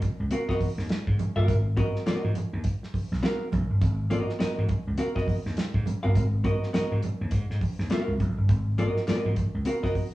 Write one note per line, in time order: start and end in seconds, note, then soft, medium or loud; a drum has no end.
0.02 kick medium
0.02 closed hi-hat medium
0.02 high conga medium
0.02 low conga medium
0.20 0.29 C#2 medium
0.31 0.49 B3 medium
0.31 0.49 F#4 medium
0.31 0.48 A#4 medium
0.31 0.48 F5 medium
0.31 closed hi-hat loud
0.31 muted conga soft
0.49 0.68 B3 medium
0.49 0.67 F#4 medium
0.49 0.67 A#4 medium
0.49 0.67 D#5 medium
0.49 kick medium
0.49 snare soft
0.60 muted slap bass stroke medium
0.60 kick medium
0.60 open hi-hat medium
0.60 muted conga soft
0.60 high conga medium
0.78 0.87 D#2 medium
0.78 snare soft
0.89 snare loud
0.89 closed hi-hat medium
0.89 muted conga soft
1.07 1.17 G#2 medium
1.07 kick medium
1.19 closed hi-hat medium
1.19 muted conga soft
1.19 high conga medium
1.19 low conga medium
1.36 1.45 G1 medium
1.36 1.55 B3 medium
1.36 1.55 F#4 medium
1.36 1.55 A#4 medium
1.36 1.54 F5 medium
1.48 1.86 G#1 loud
1.48 kick loud
1.48 closed hi-hat medium
1.48 muted conga soft
1.48 low conga loud
1.77 1.99 B3 medium
1.77 1.99 F#4 medium
1.77 1.99 A#4 loud
1.77 2.00 D#5 medium
1.77 kick loud
1.77 closed hi-hat medium
1.77 high conga medium
1.96 snare soft
2.06 2.28 B3 medium
2.06 2.29 F#4 medium
2.06 2.29 A#4 medium
2.06 2.29 D#5 medium
2.06 muted slap bass stroke soft
2.06 snare loud
2.06 closed hi-hat medium
2.06 muted conga soft
2.06 high conga soft
2.24 2.33 G#2 medium
2.24 high conga medium
2.35 closed hi-hat medium
2.35 muted conga soft
2.35 high conga medium
2.35 low conga medium
2.53 2.63 D#2 loud
2.64 kick loud
2.64 closed hi-hat loud
2.64 muted conga soft
2.83 snare soft
2.94 muted slap bass stroke medium
2.94 kick medium
2.94 open hi-hat medium
2.94 high conga medium
3.12 3.21 B1 loud
3.12 snare soft
3.23 3.45 B3 medium
3.23 3.45 F#4 medium
3.23 3.45 A#4 medium
3.23 3.46 F5 loud
3.23 snare loud
3.23 closed hi-hat medium
3.23 muted conga soft
3.52 3.67 B1 medium
3.52 kick medium
3.52 closed hi-hat medium
3.52 muted conga soft
3.52 high conga loud
3.52 low conga medium
3.70 3.79 G1 medium
3.81 4.19 G#1 loud
3.81 kick loud
3.81 closed hi-hat medium
3.81 muted conga soft
3.81 low conga medium
4.10 4.32 B3 medium
4.10 4.33 F#4 medium
4.10 4.33 A#4 medium
4.10 4.33 D#5 loud
4.10 closed hi-hat medium
4.10 muted conga soft
4.10 high conga medium
4.29 snare soft
4.39 4.61 B3 medium
4.39 4.62 F#4 medium
4.39 4.62 A#4 loud
4.39 4.62 D#5 medium
4.39 muted slap bass stroke soft
4.39 snare loud
4.39 closed hi-hat loud
4.39 muted conga soft
4.39 high conga soft
4.57 4.67 G#2 loud
4.57 high conga medium
4.69 kick loud
4.69 closed hi-hat medium
4.69 muted conga soft
4.69 high conga medium
4.69 low conga medium
4.87 4.96 C#2 medium
4.98 5.16 B3 medium
4.98 5.15 F#4 medium
4.98 5.15 A#4 medium
4.98 5.15 F5 medium
4.98 closed hi-hat loud
4.98 muted conga soft
5.16 5.35 B3 medium
5.16 5.34 F#4 medium
5.16 5.34 A#4 medium
5.16 5.34 D#5 medium
5.16 kick medium
5.16 snare soft
5.27 muted slap bass stroke medium
5.27 kick medium
5.27 open hi-hat medium
5.27 muted conga soft
5.27 high conga medium
5.46 5.55 D#2 loud
5.46 snare soft
5.56 snare loud
5.56 closed hi-hat medium
5.56 muted conga soft
5.74 5.84 G#2 medium
5.74 kick medium
5.86 closed hi-hat medium
5.86 muted conga soft
5.86 high conga medium
5.86 low conga loud
6.03 6.15 G1 medium
6.03 6.22 B3 medium
6.03 6.22 F#4 medium
6.03 6.22 A#4 medium
6.03 6.21 F5 medium
6.15 6.53 G#1 loud
6.15 kick loud
6.15 closed hi-hat loud
6.15 muted conga soft
6.15 low conga loud
6.44 6.66 B3 medium
6.44 6.66 F#4 medium
6.44 6.67 A#4 medium
6.44 6.67 D#5 medium
6.44 kick loud
6.44 closed hi-hat medium
6.44 high conga medium
6.63 snare soft
6.73 6.95 B3 medium
6.73 6.96 F#4 medium
6.73 6.96 A#4 loud
6.73 6.96 D#5 medium
6.73 muted slap bass stroke soft
6.73 snare loud
6.73 closed hi-hat medium
6.73 high conga medium
6.91 7.01 G#2 loud
6.91 high conga medium
7.03 closed hi-hat medium
7.03 muted conga soft
7.03 high conga medium
7.03 low conga medium
7.21 7.30 D#2 medium
7.31 7.46 G#2 loud
7.31 kick loud
7.31 closed hi-hat loud
7.50 7.59 G#2 medium
7.50 snare soft
7.61 kick medium
7.61 open hi-hat medium
7.61 muted conga soft
7.61 high conga medium
7.79 7.88 D#2 medium
7.79 snare soft
7.90 8.12 B3 medium
7.90 8.13 F#4 medium
7.90 8.13 A#4 medium
7.90 8.13 F5 medium
7.90 snare loud
7.90 closed hi-hat medium
7.90 muted conga soft
8.08 8.17 C#2 medium
8.20 8.34 B1 medium
8.20 kick loud
8.20 closed hi-hat medium
8.20 muted conga soft
8.20 high conga medium
8.20 low conga medium
8.38 8.49 G1 medium
8.49 8.87 G#1 loud
8.49 kick loud
8.49 closed hi-hat medium
8.49 muted conga soft
8.49 low conga loud
8.78 9.00 B3 medium
8.78 9.00 F#4 medium
8.78 9.01 A#4 loud
8.78 9.01 D#5 medium
8.78 closed hi-hat medium
8.78 muted conga soft
8.78 high conga medium
8.96 snare soft
9.08 9.30 B3 medium
9.08 9.30 F#4 medium
9.08 9.30 A#4 medium
9.08 9.30 D#5 medium
9.08 muted slap bass stroke soft
9.08 snare loud
9.08 clap medium
9.08 closed hi-hat medium
9.08 muted conga soft
9.08 high conga medium
9.25 9.35 G#2 loud
9.25 high conga medium
9.36 kick medium
9.36 closed hi-hat medium
9.36 muted conga soft
9.36 high conga medium
9.36 low conga medium
9.54 9.64 C#2 medium
9.65 9.83 B3 medium
9.65 9.83 F#4 medium
9.65 9.82 A#4 medium
9.65 9.83 F5 medium
9.65 closed hi-hat loud
9.65 muted conga soft
9.83 10.02 B3 medium
9.83 10.02 F#4 medium
9.83 10.02 A#4 medium
9.83 10.02 D#5 medium
9.83 kick medium
9.83 snare soft
9.95 muted slap bass stroke soft
9.95 kick medium
9.95 open hi-hat medium
9.95 high conga medium